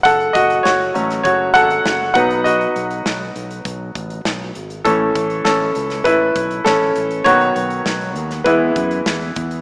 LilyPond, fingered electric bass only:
\new Staff \with { instrumentName = "Fingered electric bass" } { \clef bass \time 4/4 \key b \mixolydian \tempo 4 = 100 fis,,8 fis,,8 fis,,8 a,,8 fis,,8 gis,,8 fis,,8 b,,8~ | b,,8 b,,8 b,,8 b,,8 b,,8 a,,8 b,,8 gis,,8 | a,,8 a,,8 a,,8 cis,8 a,,8 b,,8 a,,8 a,,8 | b,,8 b,,8 b,,8 dis,8 e,8 fis,8 e,8 e,8 | }